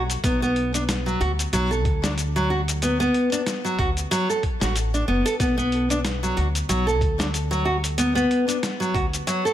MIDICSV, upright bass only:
0, 0, Header, 1, 2, 480
1, 0, Start_track
1, 0, Key_signature, 2, "minor"
1, 0, Tempo, 645161
1, 178, Time_signature, 4, 2, 24, 8
1, 7093, End_track
2, 0, Start_track
2, 0, Title_t, "Upright bass"
2, 0, Program_c, 0, 32
2, 0, Note_on_c, 0, 35, 84
2, 129, Note_off_c, 0, 35, 0
2, 176, Note_on_c, 0, 35, 95
2, 848, Note_off_c, 0, 35, 0
2, 896, Note_on_c, 0, 38, 79
2, 1076, Note_off_c, 0, 38, 0
2, 1136, Note_on_c, 0, 35, 84
2, 1377, Note_off_c, 0, 35, 0
2, 1377, Note_on_c, 0, 38, 79
2, 2288, Note_off_c, 0, 38, 0
2, 2817, Note_on_c, 0, 38, 82
2, 2996, Note_off_c, 0, 38, 0
2, 3430, Note_on_c, 0, 33, 72
2, 3728, Note_off_c, 0, 33, 0
2, 3778, Note_on_c, 0, 30, 74
2, 3873, Note_off_c, 0, 30, 0
2, 4017, Note_on_c, 0, 35, 90
2, 4688, Note_off_c, 0, 35, 0
2, 4740, Note_on_c, 0, 38, 80
2, 4918, Note_off_c, 0, 38, 0
2, 4976, Note_on_c, 0, 35, 86
2, 5215, Note_off_c, 0, 35, 0
2, 5215, Note_on_c, 0, 38, 78
2, 6127, Note_off_c, 0, 38, 0
2, 6654, Note_on_c, 0, 38, 85
2, 6835, Note_off_c, 0, 38, 0
2, 7093, End_track
0, 0, End_of_file